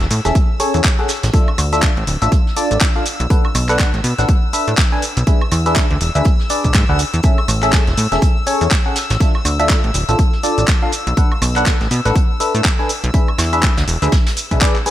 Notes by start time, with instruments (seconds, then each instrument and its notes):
Already playing: string section E6
0.00 analog synth bass E1, snare, closed hi-hat
0.10 analog synth bass A2, closed hi-hat, open hi-hat, shaker
0.25 analog synth bass E1, fm electric piano C#4 G#4 A4 E5, snare, closed hi-hat, shaker
0.35 kick, closed hi-hat, shaker
0.60 fm electric piano C#4 G#4 A4 C#5, closed hi-hat, open hi-hat, shaker
0.74 analog synth bass E2, closed hi-hat, shaker
0.84 kick, snare, clap, closed hi-hat, shaker
0.99 fm electric piano C#4 G#4 A4 F#5
1.08 snare, closed hi-hat, open hi-hat, shaker
1.23 analog synth bass A1, snare, closed hi-hat, shaker
1.34 fm electric piano D4 F4 A4 E5, kick, closed hi-hat, shaker
1.48 high woodblock
1.58 analog synth bass D2, closed hi-hat, open hi-hat, high woodblock, shaker
1.73 fm electric piano D4 F4 A4 E5, closed hi-hat, shaker
1.82 kick, snare, clap, closed hi-hat, shaker
1.97 analog synth bass A1, closed hi-hat
2.07 analog synth bass D1, closed hi-hat, open hi-hat, shaker
2.22 analog synth bass A1, fm electric piano D4 F4 A4 E5, closed hi-hat, shaker
2.32 kick, closed hi-hat, shaker
2.47 snare
2.56 fm electric piano D4 F4 A4 D5, closed hi-hat, open hi-hat, shaker
2.71 analog synth bass A1, closed hi-hat, shaker
2.81 kick, snare, clap, closed hi-hat, shaker
2.96 fm electric piano D4 F4 A4 F5
3.05 closed hi-hat, open hi-hat, shaker
3.20 analog synth bass B1, closed hi-hat, shaker
3.30 fm electric piano D4 A4 B4 F#5, kick, closed hi-hat, shaker
3.45 high woodblock
3.55 analog synth bass B1, closed hi-hat, open hi-hat, high woodblock, shaker
3.69 fm electric piano D4 A4 B4 F#5, clap, closed hi-hat, shaker
3.79 kick, snare, clap, closed hi-hat, shaker
3.94 analog synth bass A1, snare, closed hi-hat
4.04 analog synth bass B2, closed hi-hat, open hi-hat, shaker
4.18 analog synth bass A1, fm electric piano D4 A4 B4 F#5, snare, closed hi-hat, shaker
4.28 kick, closed hi-hat, shaker
4.53 fm electric piano D4 A4 B4 E5, closed hi-hat, open hi-hat, shaker
4.68 analog synth bass A2, closed hi-hat, shaker
4.78 kick, snare, clap, closed hi-hat, shaker
4.92 fm electric piano D4 A4 B4 G#5
5.02 closed hi-hat, open hi-hat, shaker
5.17 analog synth bass B1, closed hi-hat, shaker
5.27 fm electric piano D4 G#4 B4 E5, kick, closed hi-hat, shaker
5.41 high woodblock
5.52 analog synth bass E2, closed hi-hat, open hi-hat, high woodblock, shaker
5.66 fm electric piano D4 G#4 B4 E5, closed hi-hat, shaker
5.75 kick, snare, clap, closed hi-hat, shaker
5.91 analog synth bass D2, closed hi-hat
6.01 analog synth bass E1, closed hi-hat, open hi-hat, shaker
6.15 analog synth bass D2, fm electric piano D4 G#4 B4 E5, closed hi-hat, shaker
6.25 kick, closed hi-hat, shaker
6.39 snare
6.49 fm electric piano D4 G#4 B4 D5, closed hi-hat, open hi-hat, shaker
6.64 analog synth bass B1, kick, closed hi-hat, shaker
6.74 analog synth bass G#2, kick, snare, clap, closed hi-hat, shaker
6.89 analog synth bass D2, fm electric piano D4 G#4 B4 F#5
6.99 closed hi-hat, open hi-hat, shaker
7.14 analog synth bass E2, closed hi-hat, shaker
7.23 fm electric piano C#4 G#4 A4 E5, kick, closed hi-hat, shaker
7.38 high woodblock
7.48 analog synth bass A1, closed hi-hat, open hi-hat, high woodblock, shaker
7.62 fm electric piano C#4 G#4 A4 E5, clap, closed hi-hat, shaker
7.73 kick, snare, clap, closed hi-hat, shaker
7.87 analog synth bass E1, snare, closed hi-hat
7.97 analog synth bass A2, closed hi-hat, open hi-hat, shaker
8.12 analog synth bass E1, fm electric piano C#4 G#4 A4 E5, snare, closed hi-hat, shaker
8.22 kick, closed hi-hat, shaker
8.46 fm electric piano C#4 G#4 A4 C#5, closed hi-hat, open hi-hat, shaker
8.61 analog synth bass E2, closed hi-hat, shaker
8.71 kick, snare, clap, closed hi-hat, shaker
8.86 fm electric piano C#4 G#4 A4 F#5
8.96 snare, closed hi-hat, open hi-hat, shaker
9.10 analog synth bass A1, snare, closed hi-hat, shaker
9.20 fm electric piano D4 F4 A4 E5, kick, closed hi-hat, shaker
9.35 high woodblock
9.45 analog synth bass D2, closed hi-hat, open hi-hat, high woodblock, shaker
9.60 fm electric piano D4 F4 A4 E5, closed hi-hat, shaker
9.69 kick, snare, clap, closed hi-hat, shaker
9.84 analog synth bass A1, closed hi-hat
9.94 analog synth bass D1, closed hi-hat, open hi-hat, shaker
10.09 analog synth bass A1, fm electric piano D4 F4 A4 E5, closed hi-hat, shaker
10.19 kick, closed hi-hat, shaker
10.33 snare
10.43 fm electric piano D4 F4 A4 D5, closed hi-hat, open hi-hat, shaker
10.58 analog synth bass A1, closed hi-hat, shaker
10.68 kick, snare, clap, closed hi-hat, shaker
10.82 fm electric piano D4 F4 A4 F5
10.92 closed hi-hat, open hi-hat, shaker
11.07 analog synth bass B1, closed hi-hat, shaker
11.17 fm electric piano D4 A4 B4 F#5, kick, closed hi-hat, shaker
11.32 high woodblock
11.42 analog synth bass B1, closed hi-hat, open hi-hat, high woodblock, shaker
11.56 fm electric piano D4 A4 B4 F#5, clap, closed hi-hat, shaker
11.66 kick, snare, clap, closed hi-hat, shaker
11.81 analog synth bass A1, snare, closed hi-hat
11.91 analog synth bass B2, closed hi-hat, open hi-hat, shaker
12.05 analog synth bass A1, fm electric piano D4 A4 B4 F#5, snare, closed hi-hat, shaker
12.16 kick, closed hi-hat, shaker
12.40 fm electric piano D4 A4 B4 E5, closed hi-hat, open hi-hat, shaker
12.55 analog synth bass A2, closed hi-hat, shaker
12.64 kick, snare, clap, closed hi-hat, shaker
12.79 fm electric piano D4 A4 B4 G#5
12.89 closed hi-hat, open hi-hat, shaker
13.04 analog synth bass B1, closed hi-hat, shaker
13.14 fm electric piano D4 G#4 B4 E5, kick, closed hi-hat, shaker
13.28 high woodblock
13.38 analog synth bass E2, snare, closed hi-hat, open hi-hat, high woodblock, shaker
13.53 fm electric piano D4 G#4 B4 E5, closed hi-hat, shaker
13.63 kick, clap, closed hi-hat, shaker
13.77 analog synth bass D2, snare, closed hi-hat
13.88 analog synth bass E1, open hi-hat, shaker
14.02 analog synth bass D2, fm electric piano D4 G#4 B4 E5, closed hi-hat, shaker
14.12 kick, snare, closed hi-hat, shaker
14.26 snare, closed hi-hat, open hi-hat
14.36 closed hi-hat, open hi-hat, shaker
14.51 analog synth bass B1, fm electric piano D4 G#4 B4 E5, kick, closed hi-hat, shaker
14.61 fm electric piano D4 G#4 B4 D5, kick, clap, closed hi-hat, shaker
14.76 clap
14.86 fm electric piano D4 G#4 B4 G#5, closed hi-hat, open hi-hat, shaker